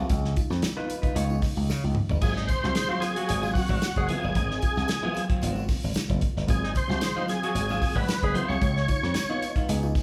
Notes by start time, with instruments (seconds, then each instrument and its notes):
0.10 slap bass C#2, reed electric piano C#3 G#3, kick, closed hi-hat, tambourine
0.25 snare
0.36 reed electric piano D#4 F4, kick, closed hi-hat, tambourine
0.50 slap bass F2, snare, tambourine
0.62 snare, closed hi-hat, tambourine
0.77 reed electric piano B3 D#4 F4, clean electric guitar D#4 F4 B4
0.90 closed hi-hat, tambourine
1.02 reed electric piano C#3 G#3, clean electric guitar D#4 F4 B4, kick, closed hi-hat, tambourine
1.15 slap bass C#2, reed electric piano C#3 G#3, clean electric guitar D#4 F4 C#5, closed hi-hat, tambourine
1.30 reed electric piano B3 D#4 F4, tambourine
1.42 reed electric piano D#4 F4, kick, snare, open hi-hat, tambourine
1.57 slap bass C#2
1.70 slap bass C#3, snare, tambourine
1.83 slap bass C#2, reed electric piano B3 D#4 F4
1.95 mid tom
2.09 slap bass G1, reed electric piano C#3 G#3, floor tom, tambourine
2.21 slap bass G#1, reed electric piano F#3 A#3 C4 F4, tonewheel organ G#4, kick, crash, tambourine
2.36 tenor saxophone D#4, snare
2.48 reed electric piano G#2 D#3, tonewheel organ C5, kick, closed hi-hat, tambourine
2.63 slap bass C2, reed electric piano F#3 A#3 C4 F4, tenor saxophone F#4, snare, tambourine
2.75 reed electric piano G#2 D#3, tenor saxophone G#4, snare, closed hi-hat, tambourine
2.89 clean electric guitar F#3 C4 F4, tenor saxophone F#4
3.00 reed electric piano F#3 A#3 C4 F4, tonewheel organ G#4, snare, closed hi-hat, tambourine
3.16 clean electric guitar F#3 C4 F4, reed electric piano C4 F4, tenor saxophone F#4, closed hi-hat
3.29 slap bass G#1, reed electric piano C4 F4, closed hi-hat, tambourine
3.42 reed electric piano G#2 D#3, clean electric guitar F#3 C4 F4, tambourine
3.53 reed electric piano F#3 A#3 C4 F4, tonewheel organ F#4, kick, snare, open hi-hat, tambourine
3.69 slap bass G#1, clean electric guitar F#3 C4 F#4, kick
3.82 snare, closed hi-hat, tambourine
3.96 slap bass F#1, tenor saxophone G#4, kick, closed hi-hat
4.07 clean electric guitar F#3 C4 F4, reed electric piano F#3 A#3 C4 F4, tonewheel organ G#4, closed hi-hat
4.21 slap bass G1, tonewheel organ G#4, tambourine
4.35 slap bass G#1, reed electric piano G#2 D#3, kick, closed hi-hat, tambourine
4.51 snare
4.62 reed electric piano C4 F4, kick, closed hi-hat, tambourine
4.76 slap bass C2, snare, tambourine
4.88 snare, closed hi-hat, tambourine
5.02 reed electric piano F#3 A#3 C4 F4, clean electric guitar F#3 C4 F4
5.14 closed hi-hat, tambourine
5.29 reed electric piano G#2 D#3, clean electric guitar F#3 C4 F4, kick, closed hi-hat
5.41 slap bass G#1, reed electric piano G#2 D#3, clean electric guitar F#3 C4 F#4, closed hi-hat, tambourine
5.55 reed electric piano F#3 A#3 C4 F4, tambourine
5.68 reed electric piano C4 F4, kick, snare, open hi-hat, tambourine
5.82 slap bass G#1, tambourine
5.94 muted slap bass stroke, snare, closed hi-hat, tambourine
6.08 slap bass F#1, reed electric piano F#3 A#3 C4 F4, kick, closed hi-hat
6.21 kick, closed hi-hat
6.35 slap bass G1, reed electric piano G#2 D#3, snare
6.47 slap bass G#1, reed electric piano F#3 A#3 C4 F4, tonewheel organ G#4, kick, closed hi-hat, tambourine
6.64 tenor saxophone D#4, snare
6.74 reed electric piano G#2 D#3, tonewheel organ C5, kick, closed hi-hat, tambourine
6.88 slap bass C2, reed electric piano F#3 A#3 C4 F4, tenor saxophone F#4, snare, tambourine
7.00 reed electric piano G#2 D#3, tenor saxophone G#4, snare, closed hi-hat, tambourine
7.16 clean electric guitar F#3 C4 F4, tenor saxophone D#4
7.26 reed electric piano F#3 A#3 C4 F4, tonewheel organ G#4, snare, closed hi-hat, tambourine
7.42 clean electric guitar F#3 C4 F4, reed electric piano C4 F4, tenor saxophone F#4, closed hi-hat
7.54 slap bass G#1, reed electric piano C4 F4, closed hi-hat, tambourine
7.68 reed electric piano G#2 D#3, clean electric guitar F#3 C4 F4, tambourine
7.81 reed electric piano F#3 A#3 C4 F4, kick, snare, open hi-hat, tambourine
7.95 slap bass G#1, clean electric guitar F#3 C4 F#4, tonewheel organ B4, kick
8.08 snare, closed hi-hat, tambourine
8.23 slap bass F#1, tenor saxophone G#4, kick, closed hi-hat
8.34 reed electric piano F#3 A#3 C4 F4, clean electric guitar F#3 C4 F4, tonewheel organ C5, closed hi-hat
8.48 slap bass C2, tonewheel organ C#5, tambourine
8.62 slap bass C#2, reed electric piano C#3 G#3, kick, closed hi-hat, tambourine
8.77 snare
8.88 reed electric piano D#4 F4, kick, closed hi-hat, tambourine
9.03 slap bass F2, snare
9.14 snare, closed hi-hat, tambourine
9.29 reed electric piano B3 D#4 F4, clean electric guitar B3 D#4 F4
9.42 closed hi-hat, tambourine
9.56 reed electric piano C#3 G#3, clean electric guitar B3 D#4 F4, kick, closed hi-hat, tambourine
9.68 slap bass C#2, reed electric piano C#3 G#3, clean electric guitar B3 D#4 G#4, closed hi-hat, tambourine
9.82 reed electric piano B3 D#4 F4, tambourine
9.95 reed electric piano D#4 F4, kick, snare, open hi-hat, tambourine